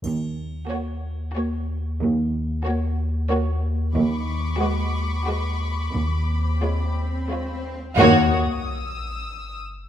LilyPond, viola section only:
\new Staff \with { instrumentName = "Viola section" } { \time 3/4 \key ees \minor \tempo 4 = 91 r4 bes4 bes4 | r4 bes4 bes4 | r4 gis4 gis4 | r4 aes4 aes4 |
bes8 r2 r8 | }